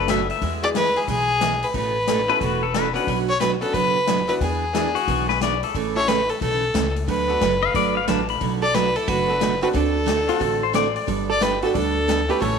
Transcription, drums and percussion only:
0.08 snare, closed hi-hat
0.30 open hi-hat
0.42 kick, open hi-hat
0.75 snare, closed hi-hat
0.96 open hi-hat
1.08 kick, open hi-hat
1.41 snare, closed hi-hat
1.62 open hi-hat
1.74 kick, open hi-hat
2.07 snare, closed hi-hat
2.41 kick, open hi-hat
2.74 snare, closed hi-hat
2.96 open hi-hat
3.07 kick, open hi-hat
3.41 snare, closed hi-hat
3.62 open hi-hat
3.74 kick, open hi-hat
4.07 snare, closed hi-hat
4.29 open hi-hat
4.41 kick, open hi-hat
4.75 snare, closed hi-hat
4.96 open hi-hat
5.08 kick, open hi-hat
5.29 snare
5.41 snare, closed hi-hat
5.63 open hi-hat
5.75 kick, open hi-hat
6.08 snare, closed hi-hat
6.29 open hi-hat
6.41 kick, open hi-hat
6.75 snare, closed hi-hat
6.96 open hi-hat
7.08 kick, open hi-hat
7.41 snare, closed hi-hat
7.74 kick, open hi-hat
8.08 snare, closed hi-hat
8.28 open hi-hat
8.41 kick, open hi-hat
8.74 snare, closed hi-hat
8.96 open hi-hat
9.08 kick, open hi-hat
9.41 snare, closed hi-hat
9.62 open hi-hat
9.74 kick, open hi-hat
10.07 snare, closed hi-hat
10.29 open hi-hat
10.41 kick, open hi-hat
10.74 snare, closed hi-hat
10.96 open hi-hat
11.08 kick, open hi-hat
11.41 snare, closed hi-hat
11.62 open hi-hat
11.75 kick, open hi-hat
12.09 snare, closed hi-hat
12.29 open hi-hat
12.42 kick, open hi-hat

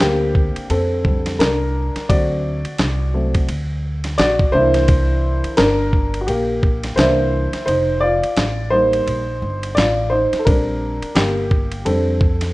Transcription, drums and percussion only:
0.00 snare, hi-hat pedal, ride
0.35 kick
0.56 ride
0.70 ride
1.05 kick
1.26 snare, ride
1.40 snare, hi-hat pedal, ride
1.96 snare, ride
2.10 kick, ride
2.65 ride
2.78 snare, hi-hat pedal, ride
3.35 kick, ride
3.49 ride
4.04 snare, ride
4.18 snare, hi-hat pedal, ride
4.39 kick
4.74 snare, ride
4.88 kick, ride
5.44 ride
5.57 snare, hi-hat pedal, ride
5.93 kick
6.14 ride
6.28 ride
6.63 kick
6.83 snare, ride
6.98 snare, hi-hat pedal, ride
7.53 snare, ride
7.68 ride
8.23 ride
8.37 snare, hi-hat pedal, ride
8.93 ride
9.08 ride
9.63 ride
9.77 snare, hi-hat pedal, ride
10.33 snare, ride
10.47 kick, ride
11.02 ride
11.16 snare, hi-hat pedal, ride
11.51 kick
11.72 ride
11.86 ride
12.21 kick
12.41 snare, ride

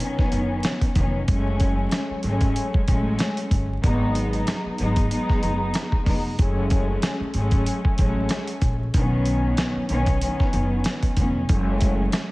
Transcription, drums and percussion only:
0.00 closed hi-hat
0.18 kick, snare
0.32 closed hi-hat
0.63 snare, closed hi-hat
0.81 kick, closed hi-hat
0.95 kick, closed hi-hat
1.28 kick, closed hi-hat
1.60 kick, closed hi-hat
1.91 snare, closed hi-hat
2.23 closed hi-hat
2.41 kick, closed hi-hat
2.56 closed hi-hat
2.74 kick
2.88 kick, closed hi-hat
3.19 snare, closed hi-hat
3.37 closed hi-hat
3.51 kick, closed hi-hat
3.84 kick, closed hi-hat
4.15 closed hi-hat
4.33 closed hi-hat
4.47 snare, closed hi-hat
4.78 closed hi-hat
4.96 kick, closed hi-hat
5.11 closed hi-hat
5.29 kick, snare
5.43 closed hi-hat
5.74 snare, closed hi-hat
5.92 kick
6.06 kick, open hi-hat
6.39 kick, closed hi-hat
6.70 kick, closed hi-hat
7.02 snare, closed hi-hat
7.34 closed hi-hat
7.51 kick, closed hi-hat
7.66 closed hi-hat
7.85 kick
7.98 kick, closed hi-hat
8.29 snare, closed hi-hat
8.47 closed hi-hat
8.61 kick, closed hi-hat
8.94 kick, closed hi-hat
9.26 closed hi-hat
9.57 snare, closed hi-hat
9.89 closed hi-hat
10.06 kick, closed hi-hat
10.21 closed hi-hat
10.40 kick, snare
10.53 closed hi-hat
10.84 snare, closed hi-hat
11.03 kick, closed hi-hat
11.17 kick, closed hi-hat
11.49 kick, closed hi-hat
11.81 kick, closed hi-hat
12.12 snare, closed hi-hat

